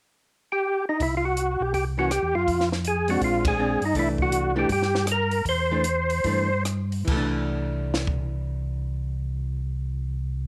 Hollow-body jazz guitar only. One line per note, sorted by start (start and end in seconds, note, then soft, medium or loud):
1.98 2.10 E3 soft
1.98 2.10 A#3 soft
1.98 2.10 C#4 medium
3.08 3.56 G#3 medium
3.08 3.56 C4 medium
3.08 3.57 D4 medium
3.59 3.80 G#3 soft
3.59 3.80 C4 medium
3.59 3.80 D4 medium
3.95 4.51 E3 medium
3.95 4.51 A3 medium
3.95 4.52 D4 medium
4.56 4.68 E3 medium
4.56 4.68 A3 medium
4.56 4.69 D4 medium
5.71 5.84 E3 medium
5.71 5.84 A3 medium
5.71 5.84 D4 medium
6.25 6.48 E3 soft
6.25 6.48 A3 soft
6.25 6.49 D4 medium
7.05 10.47 E3 medium
7.11 10.47 A3 medium
7.17 10.47 D4 medium